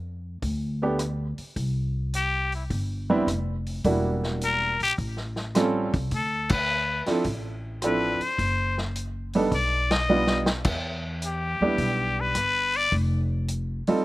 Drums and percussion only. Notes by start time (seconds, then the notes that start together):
0.42 kick, open hi-hat
0.99 cross-stick, closed hi-hat
1.38 open hi-hat
1.56 kick, open hi-hat
2.14 closed hi-hat
2.52 open hi-hat
2.70 kick, open hi-hat
3.28 cross-stick, closed hi-hat
3.66 open hi-hat
3.84 kick, open hi-hat
4.23 snare
4.41 closed hi-hat
4.80 open hi-hat
4.98 kick, open hi-hat
5.17 snare
5.36 snare
5.55 cross-stick, snare, closed hi-hat
5.93 kick, open hi-hat
6.11 kick, open hi-hat
6.49 kick, crash
7.06 snare, open hi-hat
7.24 kick, open hi-hat
7.82 cross-stick, closed hi-hat
8.21 open hi-hat
8.38 kick, open hi-hat
8.78 snare
8.96 closed hi-hat
9.33 open hi-hat
9.52 kick, open hi-hat
9.91 snare, ride
10.27 snare
10.46 snare
10.65 kick, crash
11.22 closed hi-hat
11.78 kick, open hi-hat
12.35 cross-stick, closed hi-hat
12.74 open hi-hat
12.92 kick, open hi-hat
13.48 closed hi-hat
13.87 open hi-hat